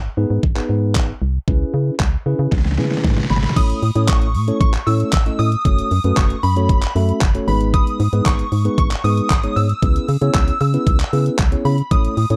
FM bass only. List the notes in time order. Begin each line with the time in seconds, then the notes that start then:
0.17 G#2
0.30 G#2
0.43 G#1
0.69 G#2
0.96 G#1
1.22 C2
1.48 C#2
1.74 C#3
2.00 C#2
2.26 C#3
2.39 C#3
2.52 C#2
2.78 C#3
3.04 G#2
3.30 G#1
3.56 A1
3.83 A2
3.96 A2
4.09 A1
4.35 A2
4.61 A1
4.87 A2
5.13 A1
5.39 A2
5.65 F#1
5.91 F#2
6.04 F#2
6.17 F#1
6.43 F#2
6.69 F#1
6.96 F#2
7.22 F#1
7.48 G#1
8.00 G#2
8.13 G#2
8.26 G#1
8.52 G#2
8.78 G#1
9.04 G#2
9.31 G#1
9.56 G#2
9.83 C#2
10.09 C#3
10.22 C#3
10.35 C#2
10.61 C#3
10.87 C#2
11.13 C#3
11.39 C#2
11.65 C#3
11.91 A1
12.17 A2
12.30 A2